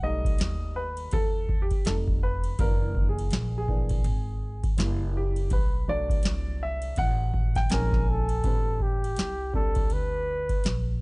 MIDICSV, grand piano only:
0, 0, Header, 1, 2, 480
1, 0, Start_track
1, 0, Tempo, 731707
1, 1701, Time_signature, 4, 2, 24, 8
1, 7226, End_track
2, 0, Start_track
2, 0, Title_t, "Grand piano"
2, 0, Program_c, 0, 0
2, 19, Note_on_c, 0, 55, 58
2, 22, Note_on_c, 0, 57, 53
2, 23, Note_on_c, 0, 75, 93
2, 24, Note_on_c, 0, 63, 62
2, 499, Note_on_c, 0, 71, 89
2, 516, Note_off_c, 0, 75, 0
2, 713, Note_off_c, 0, 55, 0
2, 715, Note_off_c, 0, 57, 0
2, 716, Note_off_c, 0, 63, 0
2, 744, Note_on_c, 0, 69, 107
2, 747, Note_off_c, 0, 71, 0
2, 1063, Note_on_c, 0, 67, 83
2, 1072, Note_off_c, 0, 69, 0
2, 1219, Note_on_c, 0, 55, 46
2, 1221, Note_on_c, 0, 57, 50
2, 1223, Note_on_c, 0, 63, 53
2, 1223, Note_on_c, 0, 69, 88
2, 1226, Note_off_c, 0, 67, 0
2, 1277, Note_off_c, 0, 69, 0
2, 1436, Note_off_c, 0, 55, 0
2, 1437, Note_off_c, 0, 57, 0
2, 1438, Note_off_c, 0, 63, 0
2, 1464, Note_on_c, 0, 71, 93
2, 1696, Note_on_c, 0, 52, 60
2, 1703, Note_on_c, 0, 58, 58
2, 1705, Note_on_c, 0, 62, 60
2, 1706, Note_on_c, 0, 70, 94
2, 1710, Note_off_c, 0, 71, 0
2, 2001, Note_off_c, 0, 70, 0
2, 2027, Note_on_c, 0, 68, 80
2, 2337, Note_off_c, 0, 68, 0
2, 2347, Note_on_c, 0, 68, 91
2, 2409, Note_off_c, 0, 52, 0
2, 2411, Note_off_c, 0, 58, 0
2, 2414, Note_off_c, 0, 62, 0
2, 2419, Note_on_c, 0, 52, 49
2, 2421, Note_on_c, 0, 58, 49
2, 2424, Note_on_c, 0, 62, 60
2, 2636, Note_off_c, 0, 52, 0
2, 2637, Note_off_c, 0, 58, 0
2, 2638, Note_off_c, 0, 62, 0
2, 3038, Note_off_c, 0, 68, 0
2, 3131, Note_on_c, 0, 55, 54
2, 3140, Note_on_c, 0, 58, 50
2, 3144, Note_on_c, 0, 64, 64
2, 3392, Note_on_c, 0, 67, 82
2, 3592, Note_off_c, 0, 55, 0
2, 3597, Note_off_c, 0, 58, 0
2, 3598, Note_off_c, 0, 64, 0
2, 3627, Note_on_c, 0, 71, 83
2, 3633, Note_off_c, 0, 67, 0
2, 3847, Note_off_c, 0, 71, 0
2, 3857, Note_on_c, 0, 54, 59
2, 3858, Note_on_c, 0, 57, 52
2, 3861, Note_on_c, 0, 62, 73
2, 3866, Note_on_c, 0, 74, 101
2, 4348, Note_on_c, 0, 76, 93
2, 4358, Note_off_c, 0, 74, 0
2, 4582, Note_on_c, 0, 78, 112
2, 4591, Note_off_c, 0, 76, 0
2, 4961, Note_on_c, 0, 79, 104
2, 4977, Note_off_c, 0, 78, 0
2, 5033, Note_off_c, 0, 54, 0
2, 5033, Note_off_c, 0, 57, 0
2, 5035, Note_off_c, 0, 62, 0
2, 5058, Note_on_c, 0, 56, 60
2, 5058, Note_on_c, 0, 80, 98
2, 5060, Note_on_c, 0, 61, 59
2, 5061, Note_on_c, 0, 60, 51
2, 5062, Note_off_c, 0, 79, 0
2, 5066, Note_on_c, 0, 63, 66
2, 5397, Note_off_c, 0, 56, 0
2, 5398, Note_off_c, 0, 61, 0
2, 5399, Note_off_c, 0, 60, 0
2, 5401, Note_off_c, 0, 63, 0
2, 5513, Note_off_c, 0, 80, 0
2, 5536, Note_on_c, 0, 55, 59
2, 5542, Note_on_c, 0, 60, 54
2, 5544, Note_on_c, 0, 62, 52
2, 5547, Note_on_c, 0, 71, 61
2, 5894, Note_off_c, 0, 55, 0
2, 5897, Note_off_c, 0, 60, 0
2, 5898, Note_off_c, 0, 62, 0
2, 5899, Note_off_c, 0, 71, 0
2, 6254, Note_on_c, 0, 55, 64
2, 6261, Note_on_c, 0, 60, 60
2, 6264, Note_on_c, 0, 67, 74
2, 6265, Note_on_c, 0, 62, 63
2, 6939, Note_off_c, 0, 55, 0
2, 6943, Note_off_c, 0, 60, 0
2, 6944, Note_off_c, 0, 62, 0
2, 6944, Note_off_c, 0, 67, 0
2, 7226, End_track
0, 0, End_of_file